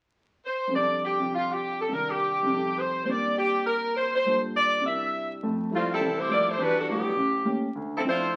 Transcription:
0.45 C5
0.67 F2 C3
0.74 G3 D4 D5
0.79 A4
1.05 G4
1.19 C3 F3 C4 G4
1.34 F4
1.52 G4
1.81 A4
1.89 C2 C3 D#3 D4 A#4
1.94 A#4
2.10 G4
2.43 F2 C3
2.49 G3 D#4
2.54 A4
2.80 C5
3.04 A#2 G3 C4 C5
3.09 D4 A#4 D5
3.38 G4
3.67 A#4
3.97 C5
4.15 C5
4.25 G2 G3 A#3 F4 A4
4.56 D5
4.81 C3 G3 D4 E4
4.86 A#4 E5
5.43 F2 A3
5.71 F3 G3 A3 C4 E4
5.75 G3 A3 F4
5.93 G3 C4 E4 A4
6.00 C2 E3
6.19 A3 E4 G4 C5
6.29 F3 G3 A3 A#3 E4 G4 D5
6.49 A3 E4 G4 C5
6.58 E2 E3 G3 D4 F#4 B4
6.79 G3 D4 F#4 A4
6.88 D3 F#3 G3 A3 B3 D4 E4 F#4 G4
7.16 A1
7.45 A3 A#3 C#4 G4
7.75 D2
7.97 F3 C4 E4 A4
8.05 F3 C4 D4 E4 F4 C5
8.09 A3

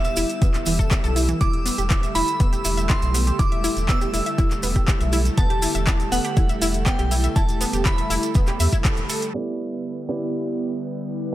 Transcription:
Already playing: D3 G3 B3 E4 G4 E5 E6
0.05 E5, closed hi-hat, maracas
0.16 E1 E4, open hi-hat, maracas
0.30 closed hi-hat, maracas
0.42 E1 B3, kick, closed hi-hat, maracas
0.54 clap, closed hi-hat, maracas
0.66 E1 E3, open hi-hat, maracas
0.79 A4, kick, closed hi-hat, maracas
0.91 E5, kick, clap, closed hi-hat, maracas
1.04 B1 A4, closed hi-hat, maracas
1.16 E4, open hi-hat, maracas
1.28 E3, closed hi-hat, maracas
1.41 E1 D3 G3 A3 E4 A4 D6, kick, closed hi-hat, maracas
1.53 closed hi-hat
1.66 B3, open hi-hat, maracas
1.78 E1 G4, closed hi-hat, maracas
1.90 E4, kick, clap, closed hi-hat, maracas
2.03 E5, closed hi-hat, maracas
2.15 E1 E4 B5, open hi-hat, maracas
2.28 closed hi-hat, maracas
2.40 E1 B3, kick, closed hi-hat, maracas
2.53 G4, closed hi-hat, maracas
2.65 E1 E4, open hi-hat, maracas
2.77 E5, closed hi-hat, maracas
2.89 E4 C6, kick, clap, closed hi-hat, maracas
3.02 B1, closed hi-hat, maracas
3.14 B3, open hi-hat, maracas
3.27 G4, closed hi-hat, maracas
3.39 E1 E4 D6, kick, closed hi-hat, maracas
3.52 E5, closed hi-hat
3.64 E4, open hi-hat, maracas
3.77 E1, closed hi-hat, maracas
3.89 B3 E6, kick, clap, closed hi-hat, maracas
4.01 G4, closed hi-hat, maracas
4.14 E1 E4, open hi-hat, maracas
4.26 E5, closed hi-hat, maracas
4.38 E1 E4, kick, closed hi-hat, maracas
4.51 clap, closed hi-hat, maracas
4.63 E1 B3, open hi-hat, maracas
4.76 G4, kick, closed hi-hat, maracas
4.88 E4, kick, clap, closed hi-hat, maracas
5.01 B1 E5, closed hi-hat, maracas
5.13 E4, open hi-hat, maracas
5.25 closed hi-hat, maracas
5.38 E1 B3 A5, kick, closed hi-hat, maracas
5.50 G4, closed hi-hat
5.62 E4, open hi-hat, maracas
5.75 E1 E5, closed hi-hat, maracas
5.87 E4, kick, clap, closed hi-hat, maracas
6.00 closed hi-hat, maracas
6.12 E1 B3 F#5, open hi-hat, maracas
6.25 G4, closed hi-hat, maracas
6.37 E1 E4, kick, closed hi-hat, maracas
6.49 E5, closed hi-hat, maracas
6.62 E1 E4, open hi-hat, maracas
6.74 closed hi-hat, maracas
6.86 B3 G5, kick, clap, closed hi-hat, maracas
6.99 B1 G4, closed hi-hat, maracas
7.11 E4, open hi-hat, maracas
7.24 E5, closed hi-hat, maracas
7.36 E1 E4 A5, kick, closed hi-hat, maracas
7.49 closed hi-hat, maracas
7.61 B3, open hi-hat, maracas
7.73 E1 G4, closed hi-hat, maracas
7.85 E4 B5, kick, clap, closed hi-hat, maracas
7.98 E5, closed hi-hat, maracas
8.10 E1 E4, open hi-hat, maracas
8.23 closed hi-hat, maracas
8.35 E1 B3, kick, closed hi-hat, maracas
8.47 G4, clap, closed hi-hat, maracas
8.60 E2 E5, open hi-hat, maracas
8.72 E4, kick, maracas
8.85 A4, kick, clap, closed hi-hat, maracas
8.97 E1, closed hi-hat, maracas
9.09 A4, open hi-hat, maracas
9.22 closed hi-hat, maracas
9.34 D3 G3 B3 E4 G4 B4 D5
10.09 B3 E4 G4 D5

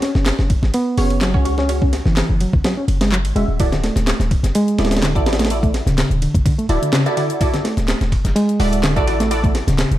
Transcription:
0.02 C#4, snare, ride
0.15 F#1, snare
0.26 snare, clap, ride
0.39 F#1, snare
0.50 kick, ride
0.63 G#1, snare
0.74 B3, ride
0.98 F#1 C#4 F#4 G#4 C#5, open hi-hat
1.10 ride
1.21 F#3, snare, clap, ride
1.34 C#2 C#4 F#4 G#4 C#5, kick
1.45 C#4 F#4 G#4 C#5, ride
1.58 C#4, snare
1.69 C#4 F#4 G#4 C#5, ride
1.82 C#4, kick
1.93 snare, ride
2.06 F#1 E3, snare
2.17 snare, clap, ride
2.30 F#1
2.40 F#3, ride
2.53 G#1, kick
2.64 F#3, snare, ride
2.77 C#4
2.88 F#1, ride
3.01 G#3, snare, ride
3.12 F#3, clap
3.25 G#1, ride
3.36 E1 G#3 C#4 F#4 G#4 E5, ride
3.48 D1
3.60 E4 F#4 A4 D5, kick, closed hi-hat, ride
3.72 D3, snare, closed hi-hat
3.84 A3, snare, ride
3.96 D1, snare, closed hi-hat
4.07 snare, clap, closed hi-hat, ride
4.20 D1, snare, closed hi-hat
4.31 kick, ride
4.43 F#1, snare, closed hi-hat
4.55 G#3, closed hi-hat, ride
4.68 closed hi-hat
4.79 D1 E4 F#4 A4 D5, snare, ride
4.85 snare, ride
4.91 snare, closed hi-hat, ride
4.97 snare, ride
5.02 D3, snare, clap, closed hi-hat, ride
5.15 A1 E4 F#4 A4 D5, kick, closed hi-hat
5.26 E4 F#4 A4 D5, snare, ride
5.33 snare, ride
5.39 A3, snare, closed hi-hat, ride
5.45 snare, ride
5.50 E4 F#4 A4 D5, closed hi-hat, ride
5.63 A3, kick, closed hi-hat
5.74 snare, ride
5.87 D1 C#3, snare, closed hi-hat
5.98 snare, clap, closed hi-hat, ride
6.10 D1, closed hi-hat
6.22 D3, ride
6.35 F#1, kick, closed hi-hat
6.46 D3, kick, closed hi-hat, ride
6.59 A3, closed hi-hat
6.69 D1 E4 F#4 A4 D5, ride
6.82 D3, closed hi-hat
6.93 C#3, snare, clap, closed hi-hat, ride
7.06 E4 F#4 A4 D5, closed hi-hat
7.17 D3 E4 F#4 A4 D5, ride
7.30 closed hi-hat
7.41 E4 F#4 A4 D5, kick, closed hi-hat, ride
7.54 D3, snare, closed hi-hat
7.65 A3, snare, ride
7.77 D1, snare, closed hi-hat
7.88 snare, clap, closed hi-hat, ride
8.01 D1, snare, closed hi-hat
8.12 kick, ride
8.25 F#1, snare, closed hi-hat
8.36 G#3, closed hi-hat, ride
8.49 closed hi-hat
8.60 D1 E4 F#4 A4 D5, open hi-hat
8.73 closed hi-hat, ride
8.83 D3, snare, clap, closed hi-hat, ride
8.96 A1 E4 F#4 A4 D5, kick, closed hi-hat
9.07 E4 F#4 A4 D5, ride
9.20 A3, snare, closed hi-hat
9.31 E4 F#4 A4 D5, closed hi-hat, ride
9.43 A3, kick, closed hi-hat
9.55 snare, ride
9.67 D1 C#3, snare, closed hi-hat
9.79 snare, clap, closed hi-hat, ride
9.91 D1, closed hi-hat

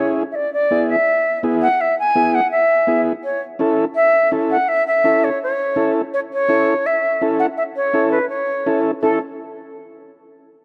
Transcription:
Already playing: C#4 C#5
0.00 E4 G#4
0.31 D5 E5
0.53 D5
0.71 B3 E4 G#4
0.89 E5
1.43 B3 E4 G#4
1.62 F#5
1.81 E5
1.99 G#5
2.15 B3 E4 G#4
2.35 F#5
2.51 E5
2.87 B3 E4 G#4
3.24 C#5
3.59 C#4 E4 A4
3.95 E5
4.32 C#4 E4 A4
4.51 F#5
4.68 E5
4.87 E5
5.04 C#4 E4 A4
5.24 C#5
5.43 C#5
5.76 C#4 E4 A4
6.14 C#5
6.33 C#5
6.49 C#4 E4 A4
6.86 E5
7.21 C#4 E4 A4
7.39 F#5
7.57 E5
7.76 C#5
7.93 C#4 E4 A4
8.12 B4
8.29 C#5
8.66 C#4 E4 A4
9.02 C#4 E4 A4

